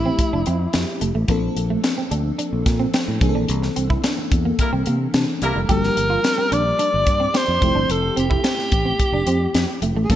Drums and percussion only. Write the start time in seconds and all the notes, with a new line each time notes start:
0.19 kick, closed hi-hat
0.46 closed hi-hat
0.73 snare, closed hi-hat
1.01 closed hi-hat
1.28 kick, closed hi-hat
1.57 closed hi-hat
1.84 snare, closed hi-hat
2.11 closed hi-hat
2.39 closed hi-hat
2.66 kick, snare, closed hi-hat
2.94 snare, closed hi-hat
3.21 kick, closed hi-hat
3.49 closed hi-hat
3.62 snare
3.76 closed hi-hat
3.90 kick
4.04 snare, closed hi-hat
4.32 kick, closed hi-hat
4.59 kick, closed hi-hat
4.86 closed hi-hat
5.14 snare, closed hi-hat
5.42 closed hi-hat
5.69 kick, closed hi-hat
5.83 snare
5.97 closed hi-hat
6.24 snare, closed hi-hat
6.52 closed hi-hat
6.79 closed hi-hat
7.07 kick, closed hi-hat
7.34 snare, closed hi-hat
7.62 kick, closed hi-hat
7.90 closed hi-hat
8.17 closed hi-hat
8.31 kick
8.44 snare, closed hi-hat
8.59 snare
8.72 kick, closed hi-hat
9.00 kick, closed hi-hat
9.27 closed hi-hat
9.55 snare, closed hi-hat
9.82 closed hi-hat
10.10 kick, closed hi-hat